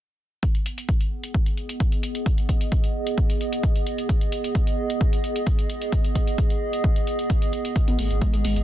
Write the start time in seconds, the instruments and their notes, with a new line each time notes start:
0.43 ambient pad B3, kick, closed hi-hat
0.55 closed hi-hat
0.66 closed hi-hat
0.75 ambient pad G#4, closed hi-hat
0.89 kick, closed hi-hat
1.01 closed hi-hat
1.24 closed hi-hat
1.34 kick, closed hi-hat
1.46 ambient pad D#5, closed hi-hat
1.57 closed hi-hat
1.69 closed hi-hat
1.80 kick, closed hi-hat
1.92 closed hi-hat
2.03 closed hi-hat
2.15 closed hi-hat
2.26 kick, closed hi-hat
2.38 closed hi-hat
2.49 kick, closed hi-hat
2.61 closed hi-hat
2.72 kick, closed hi-hat
2.84 closed hi-hat
3.07 closed hi-hat
3.18 kick, closed hi-hat
3.30 closed hi-hat
3.41 closed hi-hat
3.53 closed hi-hat
3.63 kick, closed hi-hat
3.76 closed hi-hat
3.87 closed hi-hat
3.98 closed hi-hat
4.09 kick, closed hi-hat
4.21 closed hi-hat
4.32 closed hi-hat
4.44 closed hi-hat
4.55 kick, closed hi-hat
4.67 closed hi-hat
4.90 closed hi-hat
5.01 kick, closed hi-hat
5.13 closed hi-hat
5.24 closed hi-hat
5.36 closed hi-hat
5.47 kick, closed hi-hat
5.59 closed hi-hat
5.70 closed hi-hat
5.82 closed hi-hat
5.92 kick, closed hi-hat
6.05 closed hi-hat
6.15 kick, closed hi-hat
6.27 closed hi-hat
6.38 kick, closed hi-hat
6.50 closed hi-hat
6.73 closed hi-hat
6.84 kick, closed hi-hat
6.96 closed hi-hat
7.07 closed hi-hat
7.19 closed hi-hat
7.30 kick, closed hi-hat
7.42 closed hi-hat
7.53 closed hi-hat
7.65 closed hi-hat
7.76 kick, closed hi-hat
7.88 sub bass G#1, synth arpeggio sound B3, closed hi-hat
7.99 sub bass G#1, synth arpeggio sound A3, open hi-hat
8.10 sub bass G#1, closed hi-hat
8.22 synth arpeggio sound G#3, kick, closed hi-hat
8.33 sub bass G#1, synth arpeggio sound G#3, closed hi-hat
8.44 sub bass G#1, synth arpeggio sound G#3, open hi-hat
8.56 sub bass G#1, closed hi-hat